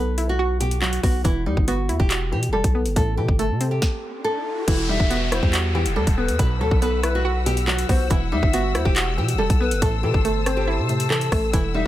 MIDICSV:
0, 0, Header, 1, 9, 480
1, 0, Start_track
1, 0, Key_signature, 1, "minor"
1, 0, Tempo, 428571
1, 1399, Time_signature, 4, 2, 24, 8
1, 13298, End_track
2, 0, Start_track
2, 0, Title_t, "String section"
2, 0, Program_c, 0, 48
2, 5239, Note_on_c, 0, 55, 85
2, 5239, Note_on_c, 0, 78, 76
2, 5239, Note_on_c, 0, 88, 94
2, 7140, Note_off_c, 0, 55, 0
2, 7140, Note_off_c, 0, 78, 0
2, 7158, Note_on_c, 0, 71, 83
2, 7158, Note_on_c, 0, 78, 78
2, 9059, Note_off_c, 0, 71, 0
2, 9079, Note_on_c, 0, 55, 86
2, 10960, Note_off_c, 0, 78, 0
2, 10979, Note_off_c, 0, 55, 0
2, 10999, Note_on_c, 0, 72, 88
2, 10999, Note_on_c, 0, 81, 79
2, 12899, Note_off_c, 0, 72, 0
2, 12900, Note_off_c, 0, 81, 0
2, 12918, Note_on_c, 0, 78, 76
2, 12919, Note_on_c, 0, 55, 84
2, 13298, Note_off_c, 0, 55, 0
2, 13298, Note_off_c, 0, 78, 0
2, 13298, Note_off_c, 0, 88, 0
2, 13298, End_track
3, 0, Start_track
3, 0, Title_t, "Pan flute"
3, 0, Program_c, 1, 75
3, 5481, Note_on_c, 1, 76, 92
3, 5931, Note_off_c, 1, 76, 0
3, 5959, Note_on_c, 1, 72, 85
3, 6187, Note_off_c, 1, 72, 0
3, 6917, Note_on_c, 1, 71, 87
3, 7146, Note_off_c, 1, 71, 0
3, 7400, Note_on_c, 1, 69, 88
3, 7850, Note_off_c, 1, 69, 0
3, 7878, Note_on_c, 1, 71, 82
3, 8106, Note_off_c, 1, 71, 0
3, 8838, Note_on_c, 1, 72, 76
3, 9066, Note_off_c, 1, 72, 0
3, 9319, Note_on_c, 1, 76, 81
3, 9770, Note_off_c, 1, 76, 0
3, 9801, Note_on_c, 1, 72, 81
3, 10028, Note_off_c, 1, 72, 0
3, 10759, Note_on_c, 1, 71, 95
3, 10987, Note_off_c, 1, 71, 0
3, 11239, Note_on_c, 1, 69, 92
3, 11690, Note_off_c, 1, 69, 0
3, 11721, Note_on_c, 1, 72, 81
3, 11948, Note_off_c, 1, 72, 0
3, 13160, Note_on_c, 1, 76, 91
3, 13298, Note_off_c, 1, 76, 0
3, 13298, End_track
4, 0, Start_track
4, 0, Title_t, "Nylon-string guitar"
4, 0, Program_c, 2, 24
4, 0, Note_on_c, 2, 71, 79
4, 298, Note_off_c, 2, 71, 0
4, 328, Note_on_c, 2, 66, 84
4, 662, Note_off_c, 2, 66, 0
4, 676, Note_on_c, 2, 67, 82
4, 882, Note_off_c, 2, 67, 0
4, 912, Note_on_c, 2, 66, 97
4, 1120, Note_off_c, 2, 66, 0
4, 1158, Note_on_c, 2, 66, 79
4, 1364, Note_off_c, 2, 66, 0
4, 1392, Note_on_c, 2, 64, 85
4, 1600, Note_off_c, 2, 64, 0
4, 1638, Note_on_c, 2, 63, 78
4, 1843, Note_off_c, 2, 63, 0
4, 1878, Note_on_c, 2, 66, 80
4, 2217, Note_off_c, 2, 66, 0
4, 2235, Note_on_c, 2, 67, 85
4, 2575, Note_off_c, 2, 67, 0
4, 2603, Note_on_c, 2, 67, 80
4, 2806, Note_off_c, 2, 67, 0
4, 2829, Note_on_c, 2, 69, 77
4, 3038, Note_off_c, 2, 69, 0
4, 3316, Note_on_c, 2, 69, 92
4, 3522, Note_off_c, 2, 69, 0
4, 3555, Note_on_c, 2, 67, 72
4, 3762, Note_off_c, 2, 67, 0
4, 3800, Note_on_c, 2, 69, 75
4, 4138, Note_off_c, 2, 69, 0
4, 4156, Note_on_c, 2, 67, 77
4, 4721, Note_off_c, 2, 67, 0
4, 4754, Note_on_c, 2, 69, 91
4, 5207, Note_off_c, 2, 69, 0
4, 5243, Note_on_c, 2, 64, 100
4, 5446, Note_off_c, 2, 64, 0
4, 5474, Note_on_c, 2, 63, 82
4, 5681, Note_off_c, 2, 63, 0
4, 5716, Note_on_c, 2, 66, 75
4, 6056, Note_off_c, 2, 66, 0
4, 6079, Note_on_c, 2, 67, 82
4, 6417, Note_off_c, 2, 67, 0
4, 6439, Note_on_c, 2, 67, 84
4, 6644, Note_off_c, 2, 67, 0
4, 6675, Note_on_c, 2, 69, 92
4, 6882, Note_off_c, 2, 69, 0
4, 7157, Note_on_c, 2, 71, 82
4, 7363, Note_off_c, 2, 71, 0
4, 7403, Note_on_c, 2, 69, 85
4, 7606, Note_off_c, 2, 69, 0
4, 7641, Note_on_c, 2, 71, 81
4, 7978, Note_off_c, 2, 71, 0
4, 8008, Note_on_c, 2, 66, 83
4, 8342, Note_off_c, 2, 66, 0
4, 8357, Note_on_c, 2, 67, 85
4, 8563, Note_off_c, 2, 67, 0
4, 8593, Note_on_c, 2, 66, 102
4, 8801, Note_off_c, 2, 66, 0
4, 8838, Note_on_c, 2, 66, 81
4, 9044, Note_off_c, 2, 66, 0
4, 9073, Note_on_c, 2, 64, 85
4, 9280, Note_off_c, 2, 64, 0
4, 9318, Note_on_c, 2, 63, 82
4, 9523, Note_off_c, 2, 63, 0
4, 9559, Note_on_c, 2, 66, 80
4, 9897, Note_off_c, 2, 66, 0
4, 9915, Note_on_c, 2, 67, 85
4, 10255, Note_off_c, 2, 67, 0
4, 10283, Note_on_c, 2, 67, 84
4, 10486, Note_off_c, 2, 67, 0
4, 10509, Note_on_c, 2, 69, 81
4, 10718, Note_off_c, 2, 69, 0
4, 10996, Note_on_c, 2, 69, 91
4, 11202, Note_off_c, 2, 69, 0
4, 11235, Note_on_c, 2, 67, 72
4, 11442, Note_off_c, 2, 67, 0
4, 11481, Note_on_c, 2, 69, 77
4, 11818, Note_off_c, 2, 69, 0
4, 11836, Note_on_c, 2, 67, 78
4, 12401, Note_off_c, 2, 67, 0
4, 12434, Note_on_c, 2, 69, 91
4, 12887, Note_off_c, 2, 69, 0
4, 12923, Note_on_c, 2, 64, 95
4, 13126, Note_off_c, 2, 64, 0
4, 13154, Note_on_c, 2, 63, 86
4, 13298, Note_off_c, 2, 63, 0
4, 13298, End_track
5, 0, Start_track
5, 0, Title_t, "Synth pluck"
5, 0, Program_c, 3, 84
5, 0, Note_on_c, 3, 47, 94
5, 0, Note_on_c, 3, 54, 78
5, 0, Note_on_c, 3, 59, 83
5, 200, Note_on_c, 3, 64, 88
5, 439, Note_on_c, 3, 66, 105
5, 664, Note_off_c, 3, 47, 0
5, 678, Note_on_c, 3, 47, 78
5, 907, Note_off_c, 3, 54, 0
5, 920, Note_on_c, 3, 54, 89
5, 1146, Note_off_c, 3, 59, 0
5, 1159, Note_on_c, 3, 59, 80
5, 1395, Note_on_c, 3, 52, 102
5, 1398, Note_off_c, 3, 47, 0
5, 1399, Note_off_c, 3, 54, 0
5, 1399, Note_off_c, 3, 59, 0
5, 1399, Note_off_c, 3, 64, 0
5, 1399, Note_off_c, 3, 66, 0
5, 1640, Note_on_c, 3, 55, 84
5, 1881, Note_on_c, 3, 59, 91
5, 2118, Note_on_c, 3, 64, 86
5, 2357, Note_on_c, 3, 66, 100
5, 2584, Note_off_c, 3, 52, 0
5, 2598, Note_on_c, 3, 52, 76
5, 2825, Note_off_c, 3, 55, 0
5, 2839, Note_on_c, 3, 55, 87
5, 3065, Note_off_c, 3, 59, 0
5, 3078, Note_on_c, 3, 59, 86
5, 3318, Note_off_c, 3, 52, 0
5, 3318, Note_off_c, 3, 59, 0
5, 3318, Note_off_c, 3, 64, 0
5, 3318, Note_off_c, 3, 66, 0
5, 3319, Note_off_c, 3, 55, 0
5, 3319, Note_on_c, 3, 45, 100
5, 3561, Note_on_c, 3, 52, 84
5, 3798, Note_on_c, 3, 57, 88
5, 4040, Note_on_c, 3, 60, 95
5, 4519, Note_off_c, 3, 45, 0
5, 4760, Note_off_c, 3, 52, 0
5, 4998, Note_off_c, 3, 57, 0
5, 5239, Note_off_c, 3, 60, 0
5, 5241, Note_on_c, 3, 52, 95
5, 5480, Note_on_c, 3, 55, 83
5, 5717, Note_on_c, 3, 59, 88
5, 5959, Note_on_c, 3, 64, 87
5, 6197, Note_on_c, 3, 66, 102
5, 6425, Note_off_c, 3, 52, 0
5, 6438, Note_on_c, 3, 52, 89
5, 6665, Note_off_c, 3, 55, 0
5, 6678, Note_on_c, 3, 55, 90
5, 6906, Note_off_c, 3, 59, 0
5, 6920, Note_on_c, 3, 59, 86
5, 7158, Note_off_c, 3, 52, 0
5, 7158, Note_off_c, 3, 55, 0
5, 7158, Note_off_c, 3, 64, 0
5, 7158, Note_off_c, 3, 66, 0
5, 7159, Note_off_c, 3, 59, 0
5, 7161, Note_on_c, 3, 47, 96
5, 7398, Note_on_c, 3, 54, 84
5, 7638, Note_on_c, 3, 59, 87
5, 7880, Note_on_c, 3, 64, 87
5, 8118, Note_on_c, 3, 66, 107
5, 8344, Note_off_c, 3, 47, 0
5, 8358, Note_on_c, 3, 47, 80
5, 8587, Note_off_c, 3, 54, 0
5, 8600, Note_on_c, 3, 54, 91
5, 8826, Note_off_c, 3, 59, 0
5, 8839, Note_on_c, 3, 59, 82
5, 9076, Note_on_c, 3, 52, 99
5, 9078, Note_off_c, 3, 47, 0
5, 9079, Note_off_c, 3, 54, 0
5, 9079, Note_off_c, 3, 59, 0
5, 9079, Note_off_c, 3, 64, 0
5, 9079, Note_off_c, 3, 66, 0
5, 9321, Note_on_c, 3, 55, 89
5, 9561, Note_on_c, 3, 59, 92
5, 9798, Note_on_c, 3, 64, 92
5, 10037, Note_on_c, 3, 66, 100
5, 10264, Note_off_c, 3, 52, 0
5, 10277, Note_on_c, 3, 52, 78
5, 10505, Note_off_c, 3, 55, 0
5, 10519, Note_on_c, 3, 55, 89
5, 10745, Note_off_c, 3, 59, 0
5, 10759, Note_on_c, 3, 59, 90
5, 10998, Note_off_c, 3, 52, 0
5, 10998, Note_off_c, 3, 64, 0
5, 10998, Note_off_c, 3, 66, 0
5, 10999, Note_off_c, 3, 55, 0
5, 10999, Note_off_c, 3, 59, 0
5, 10999, Note_on_c, 3, 45, 100
5, 11241, Note_on_c, 3, 52, 86
5, 11478, Note_on_c, 3, 57, 87
5, 11720, Note_on_c, 3, 60, 93
5, 11957, Note_on_c, 3, 64, 98
5, 12188, Note_off_c, 3, 45, 0
5, 12201, Note_on_c, 3, 45, 86
5, 12424, Note_off_c, 3, 52, 0
5, 12437, Note_on_c, 3, 52, 82
5, 12666, Note_off_c, 3, 57, 0
5, 12679, Note_on_c, 3, 57, 89
5, 12908, Note_off_c, 3, 52, 0
5, 12918, Note_off_c, 3, 64, 0
5, 12919, Note_off_c, 3, 57, 0
5, 12919, Note_off_c, 3, 60, 0
5, 12920, Note_off_c, 3, 45, 0
5, 12921, Note_on_c, 3, 52, 96
5, 13160, Note_on_c, 3, 55, 80
5, 13298, Note_off_c, 3, 52, 0
5, 13298, Note_off_c, 3, 55, 0
5, 13298, End_track
6, 0, Start_track
6, 0, Title_t, "808-style bass"
6, 0, Program_c, 4, 38
6, 0, Note_on_c, 4, 35, 103
6, 1114, Note_off_c, 4, 35, 0
6, 1159, Note_on_c, 4, 35, 106
6, 1389, Note_off_c, 4, 35, 0
6, 1399, Note_on_c, 4, 28, 100
6, 1638, Note_on_c, 4, 40, 95
6, 1655, Note_off_c, 4, 28, 0
6, 1752, Note_off_c, 4, 40, 0
6, 1759, Note_on_c, 4, 31, 112
6, 2118, Note_on_c, 4, 40, 99
6, 2135, Note_off_c, 4, 31, 0
6, 2232, Note_off_c, 4, 40, 0
6, 2237, Note_on_c, 4, 28, 107
6, 2599, Note_on_c, 4, 47, 99
6, 2615, Note_off_c, 4, 28, 0
6, 2779, Note_on_c, 4, 28, 97
6, 2795, Note_off_c, 4, 47, 0
6, 2950, Note_off_c, 4, 28, 0
6, 2959, Note_on_c, 4, 35, 104
6, 3198, Note_on_c, 4, 31, 101
6, 3215, Note_off_c, 4, 35, 0
6, 3312, Note_off_c, 4, 31, 0
6, 3318, Note_on_c, 4, 33, 102
6, 3558, Note_on_c, 4, 48, 98
6, 3575, Note_off_c, 4, 33, 0
6, 3672, Note_off_c, 4, 48, 0
6, 3679, Note_on_c, 4, 31, 112
6, 3918, Note_on_c, 4, 48, 96
6, 3935, Note_off_c, 4, 31, 0
6, 4260, Note_off_c, 4, 48, 0
6, 5238, Note_on_c, 4, 28, 109
6, 5584, Note_off_c, 4, 28, 0
6, 5599, Note_on_c, 4, 28, 108
6, 6060, Note_off_c, 4, 28, 0
6, 6078, Note_on_c, 4, 40, 106
6, 6559, Note_on_c, 4, 27, 99
6, 6576, Note_off_c, 4, 40, 0
6, 6679, Note_on_c, 4, 40, 101
6, 6695, Note_off_c, 4, 27, 0
6, 6793, Note_off_c, 4, 40, 0
6, 6799, Note_on_c, 4, 27, 108
6, 7039, Note_on_c, 4, 40, 102
6, 7056, Note_off_c, 4, 27, 0
6, 7153, Note_off_c, 4, 40, 0
6, 7159, Note_on_c, 4, 35, 104
6, 7399, Note_on_c, 4, 39, 98
6, 7416, Note_off_c, 4, 35, 0
6, 7513, Note_off_c, 4, 39, 0
6, 7519, Note_on_c, 4, 35, 108
6, 8794, Note_off_c, 4, 35, 0
6, 8839, Note_on_c, 4, 35, 107
6, 9069, Note_off_c, 4, 35, 0
6, 9079, Note_on_c, 4, 28, 106
6, 9319, Note_on_c, 4, 40, 101
6, 9336, Note_off_c, 4, 28, 0
6, 9433, Note_off_c, 4, 40, 0
6, 9439, Note_on_c, 4, 31, 109
6, 9799, Note_on_c, 4, 40, 97
6, 9816, Note_off_c, 4, 31, 0
6, 9913, Note_off_c, 4, 40, 0
6, 9918, Note_on_c, 4, 28, 105
6, 10279, Note_on_c, 4, 47, 102
6, 10296, Note_off_c, 4, 28, 0
6, 10459, Note_on_c, 4, 28, 102
6, 10475, Note_off_c, 4, 47, 0
6, 10629, Note_off_c, 4, 28, 0
6, 10639, Note_on_c, 4, 35, 103
6, 10879, Note_on_c, 4, 31, 100
6, 10895, Note_off_c, 4, 35, 0
6, 10993, Note_off_c, 4, 31, 0
6, 10999, Note_on_c, 4, 33, 108
6, 11239, Note_on_c, 4, 48, 96
6, 11256, Note_off_c, 4, 33, 0
6, 11353, Note_off_c, 4, 48, 0
6, 11359, Note_on_c, 4, 31, 113
6, 12079, Note_on_c, 4, 48, 103
6, 12096, Note_off_c, 4, 31, 0
6, 12649, Note_off_c, 4, 48, 0
6, 12679, Note_on_c, 4, 33, 103
6, 12909, Note_off_c, 4, 33, 0
6, 12919, Note_on_c, 4, 28, 107
6, 13264, Note_off_c, 4, 28, 0
6, 13298, End_track
7, 0, Start_track
7, 0, Title_t, "Downlifter"
7, 0, Program_c, 5, 103
7, 5239, Note_on_c, 5, 60, 85
7, 9079, Note_off_c, 5, 60, 0
7, 13298, End_track
8, 0, Start_track
8, 0, Title_t, "Riser"
8, 0, Program_c, 6, 103
8, 3319, Note_on_c, 6, 60, 87
8, 5239, Note_off_c, 6, 60, 0
8, 13298, End_track
9, 0, Start_track
9, 0, Title_t, "Drums"
9, 199, Note_on_c, 9, 42, 70
9, 311, Note_off_c, 9, 42, 0
9, 679, Note_on_c, 9, 42, 86
9, 791, Note_off_c, 9, 42, 0
9, 799, Note_on_c, 9, 42, 85
9, 911, Note_off_c, 9, 42, 0
9, 918, Note_on_c, 9, 39, 113
9, 1030, Note_off_c, 9, 39, 0
9, 1039, Note_on_c, 9, 42, 79
9, 1151, Note_off_c, 9, 42, 0
9, 1159, Note_on_c, 9, 36, 96
9, 1159, Note_on_c, 9, 46, 50
9, 1271, Note_off_c, 9, 36, 0
9, 1271, Note_off_c, 9, 46, 0
9, 1398, Note_on_c, 9, 42, 84
9, 1399, Note_on_c, 9, 36, 106
9, 1510, Note_off_c, 9, 42, 0
9, 1511, Note_off_c, 9, 36, 0
9, 1759, Note_on_c, 9, 36, 90
9, 1871, Note_off_c, 9, 36, 0
9, 1879, Note_on_c, 9, 42, 68
9, 1991, Note_off_c, 9, 42, 0
9, 2119, Note_on_c, 9, 42, 68
9, 2231, Note_off_c, 9, 42, 0
9, 2237, Note_on_c, 9, 36, 91
9, 2349, Note_off_c, 9, 36, 0
9, 2358, Note_on_c, 9, 39, 117
9, 2358, Note_on_c, 9, 42, 78
9, 2470, Note_off_c, 9, 39, 0
9, 2470, Note_off_c, 9, 42, 0
9, 2718, Note_on_c, 9, 42, 76
9, 2830, Note_off_c, 9, 42, 0
9, 2958, Note_on_c, 9, 42, 84
9, 2959, Note_on_c, 9, 36, 95
9, 3070, Note_off_c, 9, 42, 0
9, 3071, Note_off_c, 9, 36, 0
9, 3198, Note_on_c, 9, 42, 84
9, 3310, Note_off_c, 9, 42, 0
9, 3318, Note_on_c, 9, 36, 106
9, 3318, Note_on_c, 9, 42, 82
9, 3430, Note_off_c, 9, 36, 0
9, 3430, Note_off_c, 9, 42, 0
9, 3679, Note_on_c, 9, 36, 92
9, 3791, Note_off_c, 9, 36, 0
9, 3798, Note_on_c, 9, 42, 69
9, 3910, Note_off_c, 9, 42, 0
9, 4039, Note_on_c, 9, 42, 71
9, 4151, Note_off_c, 9, 42, 0
9, 4279, Note_on_c, 9, 36, 110
9, 4279, Note_on_c, 9, 38, 90
9, 4391, Note_off_c, 9, 36, 0
9, 4391, Note_off_c, 9, 38, 0
9, 5238, Note_on_c, 9, 36, 107
9, 5238, Note_on_c, 9, 42, 85
9, 5238, Note_on_c, 9, 49, 106
9, 5350, Note_off_c, 9, 36, 0
9, 5350, Note_off_c, 9, 42, 0
9, 5350, Note_off_c, 9, 49, 0
9, 5599, Note_on_c, 9, 36, 95
9, 5711, Note_off_c, 9, 36, 0
9, 5719, Note_on_c, 9, 42, 72
9, 5831, Note_off_c, 9, 42, 0
9, 5959, Note_on_c, 9, 37, 99
9, 5959, Note_on_c, 9, 42, 73
9, 6071, Note_off_c, 9, 37, 0
9, 6071, Note_off_c, 9, 42, 0
9, 6078, Note_on_c, 9, 36, 90
9, 6190, Note_off_c, 9, 36, 0
9, 6198, Note_on_c, 9, 39, 122
9, 6199, Note_on_c, 9, 42, 83
9, 6310, Note_off_c, 9, 39, 0
9, 6311, Note_off_c, 9, 42, 0
9, 6559, Note_on_c, 9, 42, 82
9, 6671, Note_off_c, 9, 42, 0
9, 6799, Note_on_c, 9, 36, 96
9, 6799, Note_on_c, 9, 42, 82
9, 6911, Note_off_c, 9, 36, 0
9, 6911, Note_off_c, 9, 42, 0
9, 7039, Note_on_c, 9, 42, 87
9, 7151, Note_off_c, 9, 42, 0
9, 7159, Note_on_c, 9, 36, 110
9, 7159, Note_on_c, 9, 42, 83
9, 7271, Note_off_c, 9, 36, 0
9, 7271, Note_off_c, 9, 42, 0
9, 7519, Note_on_c, 9, 36, 95
9, 7631, Note_off_c, 9, 36, 0
9, 7639, Note_on_c, 9, 42, 70
9, 7751, Note_off_c, 9, 42, 0
9, 7879, Note_on_c, 9, 37, 91
9, 7879, Note_on_c, 9, 42, 72
9, 7991, Note_off_c, 9, 37, 0
9, 7991, Note_off_c, 9, 42, 0
9, 8358, Note_on_c, 9, 42, 88
9, 8470, Note_off_c, 9, 42, 0
9, 8479, Note_on_c, 9, 42, 87
9, 8591, Note_off_c, 9, 42, 0
9, 8598, Note_on_c, 9, 39, 118
9, 8710, Note_off_c, 9, 39, 0
9, 8719, Note_on_c, 9, 42, 83
9, 8831, Note_off_c, 9, 42, 0
9, 8839, Note_on_c, 9, 36, 102
9, 8839, Note_on_c, 9, 46, 52
9, 8951, Note_off_c, 9, 36, 0
9, 8951, Note_off_c, 9, 46, 0
9, 9079, Note_on_c, 9, 36, 107
9, 9079, Note_on_c, 9, 42, 85
9, 9191, Note_off_c, 9, 36, 0
9, 9191, Note_off_c, 9, 42, 0
9, 9439, Note_on_c, 9, 36, 96
9, 9551, Note_off_c, 9, 36, 0
9, 9559, Note_on_c, 9, 42, 70
9, 9671, Note_off_c, 9, 42, 0
9, 9799, Note_on_c, 9, 37, 95
9, 9799, Note_on_c, 9, 42, 72
9, 9911, Note_off_c, 9, 37, 0
9, 9911, Note_off_c, 9, 42, 0
9, 9918, Note_on_c, 9, 36, 91
9, 10030, Note_off_c, 9, 36, 0
9, 10038, Note_on_c, 9, 39, 122
9, 10039, Note_on_c, 9, 42, 81
9, 10150, Note_off_c, 9, 39, 0
9, 10151, Note_off_c, 9, 42, 0
9, 10399, Note_on_c, 9, 42, 81
9, 10511, Note_off_c, 9, 42, 0
9, 10639, Note_on_c, 9, 36, 98
9, 10639, Note_on_c, 9, 42, 82
9, 10751, Note_off_c, 9, 36, 0
9, 10751, Note_off_c, 9, 42, 0
9, 10879, Note_on_c, 9, 42, 87
9, 10991, Note_off_c, 9, 42, 0
9, 10999, Note_on_c, 9, 36, 112
9, 10999, Note_on_c, 9, 42, 86
9, 11111, Note_off_c, 9, 36, 0
9, 11111, Note_off_c, 9, 42, 0
9, 11359, Note_on_c, 9, 36, 94
9, 11471, Note_off_c, 9, 36, 0
9, 11479, Note_on_c, 9, 42, 69
9, 11591, Note_off_c, 9, 42, 0
9, 11719, Note_on_c, 9, 37, 96
9, 11719, Note_on_c, 9, 42, 75
9, 11831, Note_off_c, 9, 37, 0
9, 11831, Note_off_c, 9, 42, 0
9, 12199, Note_on_c, 9, 42, 55
9, 12311, Note_off_c, 9, 42, 0
9, 12319, Note_on_c, 9, 42, 86
9, 12431, Note_off_c, 9, 42, 0
9, 12438, Note_on_c, 9, 39, 118
9, 12550, Note_off_c, 9, 39, 0
9, 12559, Note_on_c, 9, 42, 81
9, 12671, Note_off_c, 9, 42, 0
9, 12679, Note_on_c, 9, 36, 99
9, 12679, Note_on_c, 9, 37, 89
9, 12679, Note_on_c, 9, 46, 52
9, 12791, Note_off_c, 9, 36, 0
9, 12791, Note_off_c, 9, 37, 0
9, 12791, Note_off_c, 9, 46, 0
9, 12919, Note_on_c, 9, 36, 111
9, 12919, Note_on_c, 9, 42, 87
9, 13031, Note_off_c, 9, 36, 0
9, 13031, Note_off_c, 9, 42, 0
9, 13298, End_track
0, 0, End_of_file